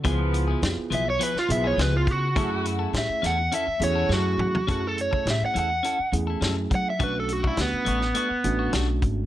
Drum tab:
HH |x-x-x-x-x-x-x-x-|x-x-x-x-x-x-----|x-x-x-x-x-x-x-x-|x-x-x-x-x-x-x-x-|
SD |----o----o--o---|----o-o-----o---|----o-------o---|----o--o----o---|
T2 |----------------|--------------o-|----------------|----------------|
FT |----------------|---------------o|----------------|----------------|
BD |o-------------o-|o---------------|o--o----------o-|o--o----------o-|